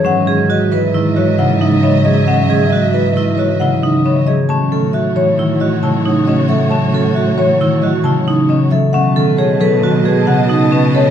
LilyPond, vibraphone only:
\new Staff \with { instrumentName = "Vibraphone" } { \time 5/4 \key e \major \tempo 4 = 135 cis'8 gis'8 fis'8 b'8 e'8 fis'8 e'8 dis'8 cis'8 gis'8 | cis'8 gis'8 fis'8 b'8 e'8 fis'8 e'8 dis'8 cis'8 gis'8 | cis'8 a'8 fis'8 cis''8 e'8 fis'8 e'8 dis'8 cis'8 a'8 | cis'8 a'8 fis'8 cis''8 e'8 fis'8 e'8 dis'8 cis'8 a'8 |
cis'8 a'8 gis'8 b'8 fis'8 gis'8 fis'8 dis'8 cis'8 a'8 | }